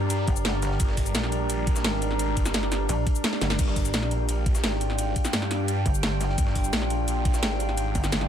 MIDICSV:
0, 0, Header, 1, 6, 480
1, 0, Start_track
1, 0, Tempo, 348837
1, 1098, Time_signature, 4, 2, 24, 8
1, 11395, End_track
2, 0, Start_track
2, 0, Title_t, "Ambient pad"
2, 0, Program_c, 0, 92
2, 0, Note_on_c, 0, 67, 81
2, 0, Note_on_c, 0, 74, 76
2, 0, Note_on_c, 0, 82, 73
2, 5614, Note_on_c, 0, 79, 72
2, 5637, Note_off_c, 0, 82, 0
2, 11395, Note_off_c, 0, 67, 0
2, 11395, Note_off_c, 0, 74, 0
2, 11395, Note_off_c, 0, 79, 0
2, 11395, End_track
3, 0, Start_track
3, 0, Title_t, "Synth drone"
3, 0, Program_c, 1, 95
3, 0, Note_on_c, 1, 55, 81
3, 0, Note_on_c, 1, 62, 75
3, 0, Note_on_c, 1, 67, 74
3, 0, Note_on_c, 1, 70, 88
3, 4883, Note_off_c, 1, 67, 0
3, 4908, Note_off_c, 1, 70, 0
3, 4939, Note_on_c, 1, 65, 75
3, 4939, Note_on_c, 1, 79, 92
3, 11395, Note_off_c, 1, 55, 0
3, 11395, Note_off_c, 1, 62, 0
3, 11395, Note_off_c, 1, 65, 0
3, 11395, Note_off_c, 1, 79, 0
3, 11395, End_track
4, 0, Start_track
4, 0, Title_t, "Detuned saw bass"
4, 0, Program_c, 2, 39
4, 0, Note_on_c, 2, 43, 104
4, 360, Note_off_c, 2, 43, 0
4, 1098, Note_on_c, 2, 31, 99
4, 1559, Note_off_c, 2, 31, 0
4, 1579, Note_on_c, 2, 34, 102
4, 2039, Note_off_c, 2, 34, 0
4, 2059, Note_on_c, 2, 34, 99
4, 2520, Note_off_c, 2, 34, 0
4, 2537, Note_on_c, 2, 32, 102
4, 3239, Note_off_c, 2, 32, 0
4, 3259, Note_on_c, 2, 31, 96
4, 3959, Note_off_c, 2, 31, 0
4, 4938, Note_on_c, 2, 31, 99
4, 5399, Note_off_c, 2, 31, 0
4, 5419, Note_on_c, 2, 34, 98
4, 5880, Note_off_c, 2, 34, 0
4, 5898, Note_on_c, 2, 34, 94
4, 6359, Note_off_c, 2, 34, 0
4, 6377, Note_on_c, 2, 32, 98
4, 7079, Note_off_c, 2, 32, 0
4, 7338, Note_on_c, 2, 43, 101
4, 8039, Note_off_c, 2, 43, 0
4, 8778, Note_on_c, 2, 31, 97
4, 9239, Note_off_c, 2, 31, 0
4, 9259, Note_on_c, 2, 34, 100
4, 9720, Note_off_c, 2, 34, 0
4, 9739, Note_on_c, 2, 34, 97
4, 10200, Note_off_c, 2, 34, 0
4, 10220, Note_on_c, 2, 32, 101
4, 10920, Note_off_c, 2, 32, 0
4, 11395, End_track
5, 0, Start_track
5, 0, Title_t, "Wobble bass"
5, 0, Program_c, 3, 39
5, 379, Note_on_c, 3, 31, 99
5, 1079, Note_off_c, 3, 31, 0
5, 3978, Note_on_c, 3, 34, 97
5, 4199, Note_off_c, 3, 34, 0
5, 4698, Note_on_c, 3, 31, 97
5, 4919, Note_off_c, 3, 31, 0
5, 8058, Note_on_c, 3, 31, 101
5, 8759, Note_off_c, 3, 31, 0
5, 10939, Note_on_c, 3, 31, 102
5, 11395, Note_off_c, 3, 31, 0
5, 11395, End_track
6, 0, Start_track
6, 0, Title_t, "Drums"
6, 138, Note_on_c, 9, 42, 92
6, 138, Note_on_c, 9, 82, 52
6, 139, Note_on_c, 9, 51, 91
6, 275, Note_off_c, 9, 42, 0
6, 275, Note_off_c, 9, 82, 0
6, 277, Note_off_c, 9, 51, 0
6, 378, Note_on_c, 9, 42, 65
6, 379, Note_on_c, 9, 36, 106
6, 379, Note_on_c, 9, 51, 69
6, 498, Note_on_c, 9, 82, 64
6, 516, Note_off_c, 9, 36, 0
6, 516, Note_off_c, 9, 42, 0
6, 517, Note_off_c, 9, 51, 0
6, 618, Note_on_c, 9, 38, 116
6, 618, Note_on_c, 9, 42, 92
6, 619, Note_off_c, 9, 38, 0
6, 619, Note_on_c, 9, 38, 118
6, 619, Note_on_c, 9, 51, 90
6, 636, Note_off_c, 9, 82, 0
6, 756, Note_off_c, 9, 42, 0
6, 757, Note_off_c, 9, 38, 0
6, 757, Note_off_c, 9, 51, 0
6, 858, Note_on_c, 9, 42, 67
6, 858, Note_on_c, 9, 82, 29
6, 859, Note_on_c, 9, 38, 47
6, 859, Note_on_c, 9, 51, 69
6, 979, Note_off_c, 9, 38, 0
6, 979, Note_on_c, 9, 38, 38
6, 995, Note_off_c, 9, 42, 0
6, 995, Note_off_c, 9, 82, 0
6, 997, Note_off_c, 9, 51, 0
6, 1098, Note_on_c, 9, 42, 97
6, 1098, Note_on_c, 9, 82, 52
6, 1099, Note_on_c, 9, 36, 115
6, 1099, Note_on_c, 9, 51, 91
6, 1117, Note_off_c, 9, 38, 0
6, 1219, Note_on_c, 9, 38, 53
6, 1236, Note_off_c, 9, 36, 0
6, 1236, Note_off_c, 9, 42, 0
6, 1236, Note_off_c, 9, 82, 0
6, 1237, Note_off_c, 9, 51, 0
6, 1338, Note_on_c, 9, 46, 85
6, 1339, Note_on_c, 9, 36, 62
6, 1339, Note_on_c, 9, 42, 68
6, 1339, Note_on_c, 9, 82, 30
6, 1356, Note_off_c, 9, 38, 0
6, 1458, Note_on_c, 9, 51, 46
6, 1459, Note_off_c, 9, 82, 0
6, 1459, Note_on_c, 9, 82, 60
6, 1476, Note_off_c, 9, 36, 0
6, 1476, Note_off_c, 9, 46, 0
6, 1477, Note_off_c, 9, 42, 0
6, 1578, Note_off_c, 9, 51, 0
6, 1578, Note_off_c, 9, 82, 0
6, 1578, Note_on_c, 9, 38, 117
6, 1578, Note_on_c, 9, 42, 97
6, 1578, Note_on_c, 9, 51, 88
6, 1578, Note_on_c, 9, 82, 55
6, 1698, Note_on_c, 9, 40, 48
6, 1715, Note_off_c, 9, 51, 0
6, 1716, Note_off_c, 9, 38, 0
6, 1716, Note_off_c, 9, 42, 0
6, 1716, Note_off_c, 9, 82, 0
6, 1818, Note_on_c, 9, 42, 72
6, 1818, Note_on_c, 9, 51, 70
6, 1836, Note_off_c, 9, 40, 0
6, 1955, Note_off_c, 9, 42, 0
6, 1955, Note_off_c, 9, 51, 0
6, 2058, Note_on_c, 9, 42, 95
6, 2058, Note_on_c, 9, 51, 93
6, 2058, Note_on_c, 9, 82, 54
6, 2196, Note_off_c, 9, 42, 0
6, 2196, Note_off_c, 9, 51, 0
6, 2196, Note_off_c, 9, 82, 0
6, 2298, Note_on_c, 9, 42, 68
6, 2298, Note_on_c, 9, 51, 70
6, 2299, Note_on_c, 9, 36, 105
6, 2418, Note_on_c, 9, 38, 60
6, 2419, Note_on_c, 9, 82, 64
6, 2436, Note_off_c, 9, 36, 0
6, 2436, Note_off_c, 9, 42, 0
6, 2436, Note_off_c, 9, 51, 0
6, 2538, Note_off_c, 9, 38, 0
6, 2538, Note_on_c, 9, 38, 117
6, 2538, Note_on_c, 9, 42, 98
6, 2538, Note_on_c, 9, 51, 89
6, 2556, Note_off_c, 9, 82, 0
6, 2658, Note_off_c, 9, 38, 0
6, 2658, Note_on_c, 9, 38, 50
6, 2675, Note_off_c, 9, 51, 0
6, 2676, Note_off_c, 9, 42, 0
6, 2778, Note_on_c, 9, 42, 71
6, 2778, Note_on_c, 9, 51, 72
6, 2778, Note_on_c, 9, 82, 30
6, 2796, Note_off_c, 9, 38, 0
6, 2898, Note_on_c, 9, 40, 32
6, 2915, Note_off_c, 9, 51, 0
6, 2916, Note_off_c, 9, 42, 0
6, 2916, Note_off_c, 9, 82, 0
6, 3018, Note_on_c, 9, 51, 93
6, 3019, Note_on_c, 9, 42, 98
6, 3019, Note_on_c, 9, 82, 53
6, 3036, Note_off_c, 9, 40, 0
6, 3155, Note_off_c, 9, 51, 0
6, 3156, Note_off_c, 9, 42, 0
6, 3156, Note_off_c, 9, 82, 0
6, 3258, Note_on_c, 9, 42, 69
6, 3258, Note_on_c, 9, 51, 72
6, 3258, Note_on_c, 9, 82, 29
6, 3259, Note_on_c, 9, 36, 63
6, 3378, Note_off_c, 9, 82, 0
6, 3378, Note_on_c, 9, 38, 41
6, 3378, Note_on_c, 9, 40, 56
6, 3378, Note_on_c, 9, 82, 60
6, 3395, Note_off_c, 9, 51, 0
6, 3396, Note_off_c, 9, 36, 0
6, 3396, Note_off_c, 9, 42, 0
6, 3498, Note_off_c, 9, 38, 0
6, 3498, Note_on_c, 9, 38, 120
6, 3498, Note_on_c, 9, 51, 91
6, 3499, Note_off_c, 9, 38, 0
6, 3499, Note_off_c, 9, 82, 0
6, 3499, Note_on_c, 9, 38, 117
6, 3499, Note_on_c, 9, 42, 101
6, 3499, Note_on_c, 9, 82, 52
6, 3516, Note_off_c, 9, 40, 0
6, 3618, Note_off_c, 9, 51, 0
6, 3618, Note_on_c, 9, 40, 49
6, 3618, Note_on_c, 9, 51, 45
6, 3636, Note_off_c, 9, 38, 0
6, 3636, Note_off_c, 9, 42, 0
6, 3636, Note_off_c, 9, 82, 0
6, 3737, Note_off_c, 9, 51, 0
6, 3737, Note_on_c, 9, 51, 70
6, 3738, Note_off_c, 9, 40, 0
6, 3738, Note_on_c, 9, 40, 59
6, 3738, Note_on_c, 9, 42, 75
6, 3738, Note_on_c, 9, 82, 29
6, 3875, Note_off_c, 9, 51, 0
6, 3876, Note_off_c, 9, 40, 0
6, 3876, Note_off_c, 9, 42, 0
6, 3876, Note_off_c, 9, 82, 0
6, 3978, Note_on_c, 9, 51, 94
6, 3979, Note_on_c, 9, 42, 99
6, 3979, Note_on_c, 9, 82, 52
6, 4115, Note_off_c, 9, 51, 0
6, 4116, Note_off_c, 9, 42, 0
6, 4116, Note_off_c, 9, 82, 0
6, 4218, Note_on_c, 9, 36, 104
6, 4218, Note_on_c, 9, 51, 69
6, 4219, Note_on_c, 9, 42, 69
6, 4339, Note_on_c, 9, 82, 63
6, 4355, Note_off_c, 9, 51, 0
6, 4356, Note_off_c, 9, 36, 0
6, 4356, Note_off_c, 9, 42, 0
6, 4458, Note_on_c, 9, 38, 119
6, 4458, Note_on_c, 9, 51, 93
6, 4459, Note_off_c, 9, 38, 0
6, 4459, Note_on_c, 9, 38, 116
6, 4459, Note_on_c, 9, 42, 98
6, 4477, Note_off_c, 9, 82, 0
6, 4579, Note_off_c, 9, 38, 0
6, 4579, Note_on_c, 9, 38, 54
6, 4596, Note_off_c, 9, 42, 0
6, 4596, Note_off_c, 9, 51, 0
6, 4698, Note_off_c, 9, 38, 0
6, 4698, Note_on_c, 9, 38, 81
6, 4698, Note_on_c, 9, 42, 72
6, 4698, Note_on_c, 9, 82, 30
6, 4699, Note_off_c, 9, 38, 0
6, 4699, Note_on_c, 9, 38, 49
6, 4699, Note_on_c, 9, 51, 70
6, 4818, Note_off_c, 9, 38, 0
6, 4818, Note_off_c, 9, 82, 0
6, 4818, Note_on_c, 9, 38, 80
6, 4818, Note_on_c, 9, 82, 28
6, 4836, Note_off_c, 9, 42, 0
6, 4836, Note_off_c, 9, 51, 0
6, 4938, Note_off_c, 9, 82, 0
6, 4938, Note_on_c, 9, 36, 121
6, 4938, Note_on_c, 9, 42, 98
6, 4938, Note_on_c, 9, 49, 78
6, 4938, Note_on_c, 9, 51, 91
6, 4938, Note_on_c, 9, 82, 52
6, 4956, Note_off_c, 9, 38, 0
6, 5059, Note_on_c, 9, 38, 51
6, 5075, Note_off_c, 9, 42, 0
6, 5075, Note_off_c, 9, 49, 0
6, 5075, Note_off_c, 9, 82, 0
6, 5076, Note_off_c, 9, 36, 0
6, 5076, Note_off_c, 9, 51, 0
6, 5178, Note_on_c, 9, 42, 68
6, 5178, Note_on_c, 9, 82, 28
6, 5179, Note_on_c, 9, 36, 64
6, 5179, Note_on_c, 9, 46, 83
6, 5196, Note_off_c, 9, 38, 0
6, 5298, Note_off_c, 9, 82, 0
6, 5298, Note_on_c, 9, 82, 59
6, 5299, Note_on_c, 9, 51, 45
6, 5316, Note_off_c, 9, 36, 0
6, 5316, Note_off_c, 9, 42, 0
6, 5316, Note_off_c, 9, 46, 0
6, 5418, Note_off_c, 9, 82, 0
6, 5418, Note_on_c, 9, 38, 122
6, 5418, Note_on_c, 9, 42, 98
6, 5418, Note_on_c, 9, 82, 53
6, 5419, Note_off_c, 9, 38, 0
6, 5419, Note_off_c, 9, 51, 0
6, 5419, Note_on_c, 9, 38, 119
6, 5419, Note_on_c, 9, 51, 88
6, 5538, Note_on_c, 9, 40, 50
6, 5556, Note_off_c, 9, 38, 0
6, 5556, Note_off_c, 9, 42, 0
6, 5556, Note_off_c, 9, 51, 0
6, 5556, Note_off_c, 9, 82, 0
6, 5658, Note_on_c, 9, 51, 71
6, 5659, Note_on_c, 9, 42, 72
6, 5675, Note_off_c, 9, 40, 0
6, 5796, Note_off_c, 9, 42, 0
6, 5796, Note_off_c, 9, 51, 0
6, 5898, Note_on_c, 9, 51, 95
6, 5899, Note_on_c, 9, 42, 98
6, 5899, Note_on_c, 9, 82, 51
6, 6036, Note_off_c, 9, 42, 0
6, 6036, Note_off_c, 9, 51, 0
6, 6036, Note_off_c, 9, 82, 0
6, 6138, Note_on_c, 9, 36, 108
6, 6139, Note_on_c, 9, 42, 71
6, 6139, Note_on_c, 9, 51, 69
6, 6259, Note_on_c, 9, 38, 60
6, 6259, Note_on_c, 9, 82, 59
6, 6276, Note_off_c, 9, 36, 0
6, 6276, Note_off_c, 9, 42, 0
6, 6276, Note_off_c, 9, 51, 0
6, 6378, Note_off_c, 9, 38, 0
6, 6378, Note_on_c, 9, 38, 119
6, 6378, Note_on_c, 9, 51, 93
6, 6379, Note_off_c, 9, 38, 0
6, 6379, Note_on_c, 9, 38, 116
6, 6379, Note_on_c, 9, 42, 99
6, 6396, Note_off_c, 9, 82, 0
6, 6499, Note_off_c, 9, 38, 0
6, 6499, Note_on_c, 9, 38, 51
6, 6516, Note_off_c, 9, 42, 0
6, 6516, Note_off_c, 9, 51, 0
6, 6619, Note_on_c, 9, 42, 72
6, 6619, Note_on_c, 9, 51, 71
6, 6619, Note_on_c, 9, 82, 28
6, 6636, Note_off_c, 9, 38, 0
6, 6739, Note_on_c, 9, 40, 35
6, 6756, Note_off_c, 9, 42, 0
6, 6756, Note_off_c, 9, 51, 0
6, 6756, Note_off_c, 9, 82, 0
6, 6859, Note_on_c, 9, 42, 93
6, 6859, Note_on_c, 9, 51, 91
6, 6859, Note_on_c, 9, 82, 48
6, 6877, Note_off_c, 9, 40, 0
6, 6997, Note_off_c, 9, 42, 0
6, 6997, Note_off_c, 9, 51, 0
6, 6997, Note_off_c, 9, 82, 0
6, 7099, Note_on_c, 9, 36, 67
6, 7099, Note_on_c, 9, 42, 69
6, 7099, Note_on_c, 9, 51, 70
6, 7099, Note_on_c, 9, 82, 27
6, 7219, Note_off_c, 9, 82, 0
6, 7219, Note_on_c, 9, 38, 40
6, 7219, Note_on_c, 9, 40, 58
6, 7219, Note_on_c, 9, 82, 56
6, 7236, Note_off_c, 9, 36, 0
6, 7236, Note_off_c, 9, 51, 0
6, 7237, Note_off_c, 9, 42, 0
6, 7338, Note_off_c, 9, 38, 0
6, 7338, Note_off_c, 9, 82, 0
6, 7338, Note_on_c, 9, 38, 127
6, 7338, Note_on_c, 9, 42, 97
6, 7338, Note_on_c, 9, 82, 49
6, 7339, Note_off_c, 9, 38, 0
6, 7339, Note_on_c, 9, 38, 118
6, 7339, Note_on_c, 9, 51, 91
6, 7356, Note_off_c, 9, 40, 0
6, 7458, Note_on_c, 9, 40, 52
6, 7459, Note_off_c, 9, 51, 0
6, 7459, Note_on_c, 9, 51, 47
6, 7475, Note_off_c, 9, 42, 0
6, 7475, Note_off_c, 9, 82, 0
6, 7476, Note_off_c, 9, 38, 0
6, 7578, Note_off_c, 9, 40, 0
6, 7578, Note_on_c, 9, 40, 61
6, 7578, Note_on_c, 9, 42, 72
6, 7579, Note_off_c, 9, 51, 0
6, 7579, Note_on_c, 9, 51, 72
6, 7716, Note_off_c, 9, 40, 0
6, 7716, Note_off_c, 9, 42, 0
6, 7717, Note_off_c, 9, 51, 0
6, 7819, Note_on_c, 9, 42, 94
6, 7819, Note_on_c, 9, 82, 48
6, 7820, Note_on_c, 9, 51, 90
6, 7956, Note_off_c, 9, 42, 0
6, 7956, Note_off_c, 9, 82, 0
6, 7957, Note_off_c, 9, 51, 0
6, 8058, Note_on_c, 9, 36, 113
6, 8059, Note_on_c, 9, 42, 69
6, 8059, Note_on_c, 9, 51, 69
6, 8179, Note_on_c, 9, 82, 59
6, 8196, Note_off_c, 9, 36, 0
6, 8196, Note_off_c, 9, 42, 0
6, 8197, Note_off_c, 9, 51, 0
6, 8299, Note_on_c, 9, 38, 119
6, 8299, Note_on_c, 9, 42, 95
6, 8299, Note_on_c, 9, 51, 93
6, 8317, Note_off_c, 9, 82, 0
6, 8436, Note_off_c, 9, 42, 0
6, 8437, Note_off_c, 9, 38, 0
6, 8437, Note_off_c, 9, 51, 0
6, 8539, Note_on_c, 9, 38, 50
6, 8539, Note_on_c, 9, 42, 69
6, 8539, Note_on_c, 9, 51, 72
6, 8539, Note_on_c, 9, 82, 28
6, 8659, Note_off_c, 9, 38, 0
6, 8659, Note_on_c, 9, 38, 40
6, 8677, Note_off_c, 9, 42, 0
6, 8677, Note_off_c, 9, 51, 0
6, 8677, Note_off_c, 9, 82, 0
6, 8778, Note_on_c, 9, 36, 127
6, 8779, Note_on_c, 9, 42, 92
6, 8779, Note_on_c, 9, 51, 92
6, 8779, Note_on_c, 9, 82, 49
6, 8797, Note_off_c, 9, 38, 0
6, 8899, Note_on_c, 9, 38, 51
6, 8916, Note_off_c, 9, 36, 0
6, 8917, Note_off_c, 9, 42, 0
6, 8917, Note_off_c, 9, 51, 0
6, 8917, Note_off_c, 9, 82, 0
6, 9018, Note_on_c, 9, 36, 70
6, 9019, Note_on_c, 9, 42, 63
6, 9019, Note_on_c, 9, 46, 83
6, 9019, Note_on_c, 9, 82, 26
6, 9036, Note_off_c, 9, 38, 0
6, 9139, Note_off_c, 9, 82, 0
6, 9139, Note_on_c, 9, 51, 46
6, 9139, Note_on_c, 9, 82, 55
6, 9156, Note_off_c, 9, 36, 0
6, 9156, Note_off_c, 9, 46, 0
6, 9157, Note_off_c, 9, 42, 0
6, 9259, Note_off_c, 9, 51, 0
6, 9259, Note_on_c, 9, 38, 116
6, 9259, Note_on_c, 9, 51, 89
6, 9260, Note_off_c, 9, 38, 0
6, 9260, Note_off_c, 9, 82, 0
6, 9260, Note_on_c, 9, 38, 127
6, 9260, Note_on_c, 9, 42, 91
6, 9260, Note_on_c, 9, 82, 49
6, 9380, Note_on_c, 9, 40, 49
6, 9396, Note_off_c, 9, 51, 0
6, 9397, Note_off_c, 9, 38, 0
6, 9397, Note_off_c, 9, 42, 0
6, 9397, Note_off_c, 9, 82, 0
6, 9499, Note_on_c, 9, 42, 68
6, 9499, Note_on_c, 9, 51, 72
6, 9517, Note_off_c, 9, 40, 0
6, 9636, Note_off_c, 9, 42, 0
6, 9636, Note_off_c, 9, 51, 0
6, 9739, Note_on_c, 9, 51, 89
6, 9740, Note_on_c, 9, 42, 90
6, 9740, Note_on_c, 9, 82, 47
6, 9877, Note_off_c, 9, 42, 0
6, 9877, Note_off_c, 9, 51, 0
6, 9877, Note_off_c, 9, 82, 0
6, 9979, Note_on_c, 9, 36, 115
6, 9979, Note_on_c, 9, 51, 72
6, 9980, Note_on_c, 9, 42, 65
6, 10099, Note_on_c, 9, 38, 60
6, 10100, Note_on_c, 9, 82, 56
6, 10116, Note_off_c, 9, 36, 0
6, 10117, Note_off_c, 9, 42, 0
6, 10117, Note_off_c, 9, 51, 0
6, 10219, Note_off_c, 9, 38, 0
6, 10219, Note_on_c, 9, 38, 121
6, 10219, Note_on_c, 9, 42, 90
6, 10219, Note_on_c, 9, 51, 93
6, 10237, Note_off_c, 9, 82, 0
6, 10339, Note_off_c, 9, 38, 0
6, 10339, Note_on_c, 9, 38, 50
6, 10357, Note_off_c, 9, 42, 0
6, 10357, Note_off_c, 9, 51, 0
6, 10458, Note_on_c, 9, 42, 67
6, 10458, Note_on_c, 9, 82, 28
6, 10459, Note_on_c, 9, 51, 70
6, 10477, Note_off_c, 9, 38, 0
6, 10578, Note_on_c, 9, 40, 33
6, 10596, Note_off_c, 9, 42, 0
6, 10596, Note_off_c, 9, 82, 0
6, 10597, Note_off_c, 9, 51, 0
6, 10698, Note_on_c, 9, 42, 90
6, 10698, Note_on_c, 9, 82, 49
6, 10699, Note_on_c, 9, 51, 89
6, 10716, Note_off_c, 9, 40, 0
6, 10836, Note_off_c, 9, 42, 0
6, 10836, Note_off_c, 9, 82, 0
6, 10837, Note_off_c, 9, 51, 0
6, 10939, Note_on_c, 9, 36, 66
6, 10939, Note_on_c, 9, 42, 64
6, 10939, Note_on_c, 9, 51, 71
6, 10939, Note_on_c, 9, 82, 27
6, 11058, Note_off_c, 9, 82, 0
6, 11058, Note_on_c, 9, 40, 54
6, 11058, Note_on_c, 9, 82, 56
6, 11059, Note_on_c, 9, 38, 41
6, 11076, Note_off_c, 9, 36, 0
6, 11076, Note_off_c, 9, 42, 0
6, 11077, Note_off_c, 9, 51, 0
6, 11179, Note_off_c, 9, 38, 0
6, 11179, Note_off_c, 9, 82, 0
6, 11179, Note_on_c, 9, 38, 118
6, 11179, Note_on_c, 9, 42, 91
6, 11179, Note_on_c, 9, 51, 88
6, 11179, Note_on_c, 9, 82, 50
6, 11196, Note_off_c, 9, 40, 0
6, 11298, Note_on_c, 9, 40, 48
6, 11299, Note_off_c, 9, 51, 0
6, 11299, Note_on_c, 9, 51, 46
6, 11316, Note_off_c, 9, 42, 0
6, 11316, Note_off_c, 9, 82, 0
6, 11317, Note_off_c, 9, 38, 0
6, 11395, Note_off_c, 9, 40, 0
6, 11395, Note_off_c, 9, 51, 0
6, 11395, End_track
0, 0, End_of_file